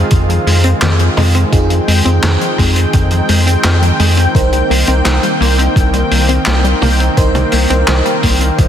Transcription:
Already playing: D#3 G#3 C4 D#4 F4 G#4
0.10 F2 D#3, kick, closed hi-hat
0.29 F3, closed hi-hat
0.47 F2 G#3, open hi-hat
0.64 C4, closed hi-hat
0.82 F2 D#3, snare, clap, closed hi-hat
0.99 F3, closed hi-hat
1.17 F2 G#3, open hi-hat, mid tom
1.34 C4, closed hi-hat
1.52 F2 D#3 D#4 F4 G#4 G5, kick, closed hi-hat
1.70 F3, closed hi-hat
1.88 F2 G#3, open hi-hat
2.05 F2 C4 D#4 F4 G#4, closed hi-hat
2.23 F2 D#3, snare, clap, closed hi-hat, mid tom
2.41 F3, closed hi-hat
2.58 F2 G#3, kick, open hi-hat
2.76 C4, closed hi-hat
2.93 F2 D#3, kick, closed hi-hat
3.11 F3, closed hi-hat
3.29 F2 G#3, open hi-hat
3.47 C4, closed hi-hat
3.64 F2 D#3, snare, clap, closed hi-hat
3.82 F3, closed hi-hat
3.99 F2 G#3, open hi-hat
4.17 C4, closed hi-hat
4.35 C2 D#3 A#3 D#4 A#4 C5, kick, closed hi-hat
4.52 G3, closed hi-hat
4.70 C2 A#3, open hi-hat
4.87 C2 C4 D#4 A#4 C5, closed hi-hat
5.05 C2 D#3, snare, clap, closed hi-hat, mid tom
5.23 G3, closed hi-hat
5.41 C2 A#3, open hi-hat
5.58 C4, closed hi-hat
5.76 C2 D#3, kick, closed hi-hat
5.93 G3, closed hi-hat
6.11 C2 A#3, open hi-hat
6.29 C4, closed hi-hat
6.45 C2 D#3, snare, clap, closed hi-hat
6.64 G3, closed hi-hat
6.82 C2 A#3, open hi-hat, mid tom
6.99 C4, closed hi-hat
7.17 C2 D#3 D#4 A#4 C5, kick, closed hi-hat
7.35 G3, closed hi-hat, mid tom
7.52 C2 A#3, open hi-hat
7.70 C2 C4 D#4 A#4 C5, closed hi-hat
7.88 C2 D#3, snare, clap, closed hi-hat, mid tom
8.05 G3, closed hi-hat
8.23 C2 A#3, kick, open hi-hat
8.41 C4, closed hi-hat
8.58 C2 D#3, kick, closed hi-hat

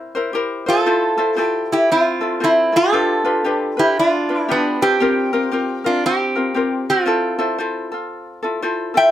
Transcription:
Already playing: C4 E4 A#4 C5
0.15 E4 A#4 C5
0.33 E4 G4 A#4 C5
0.66 E4 F4 A4 A#4 C5
0.86 E4 F4 A4 C5
1.18 E4 F4 A4 C5
1.37 E4 F4 A4 C5
1.43 G4
1.72 E4 G4
1.92 C4 F4
2.21 E4 F4 A4
2.40 C4 E4 F4 A4 C5
2.44 E4
2.72 E4 F4 A4
2.77 A4
2.93 D4 F4 G4 B4
3.25 D4 F4 G4 B4
3.44 D4 F4 G4 B4
3.77 D4 E4 F4 G4 B4
3.99 D4 F4
4.29 D4 F4 B4
4.37 E4
4.49 B3 D4 F4 G4 B4
4.81 C4 D4 F4 G4 B4
5.00 C4 F4 G4 A#4
5.33 C4 F4 G4 A#4
5.52 C4 F4 G4 A#4
5.84 C4 D4 F4 A#4
6.06 C4 G4
6.35 C4 F4 A#4
6.54 C4 F4 G4 A#4
6.90 C4 F4
7.06 E4 F4 A4 C5
7.39 E4 F4 A4 C5
7.58 E4 F4 A4 C5
7.92 F4 A4
8.43 E4 F4 A4
8.62 E4 F4 A4 C5
8.94 E4 F4 A4 E5 G5

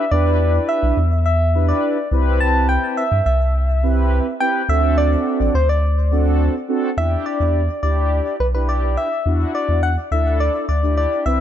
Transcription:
Already playing: E5
0.11 E2 D4 E4 G4 B4 D5
0.69 E5
0.83 B1
0.97 E2
1.26 E5
1.54 D4 E4 G4 B4
1.69 D5
2.11 C2 C4 E4 G4 B4
2.40 A5
2.69 G5
2.97 E5
3.12 G2
3.26 C2 E5
3.83 C4 E4 G4 B4
4.40 C4 E4 G4 B4 G5
4.68 D2 C4 D4 F#4 A4 E5
4.98 D5
5.40 A1
5.54 D2 C5
5.69 D5
6.11 C4 D4 F#4 A4
6.68 C4 D4 F#4 A4
6.97 E2 D4 E4 G4 E5
7.26 D5
7.40 E2
7.82 D2 D4 E4 G4 D5
8.40 B1 B4
8.54 D4 E4 G4 B4
8.69 D5
8.97 E5
9.25 E2 D4 E4 F#4
9.55 D5
9.69 E2
9.83 F#5
10.11 D2 D4 E4 A4 E5
10.40 D5
10.69 D2 D5
10.83 D4 E4 G4
10.97 D5
11.26 C2 C4 E4 B4 E5

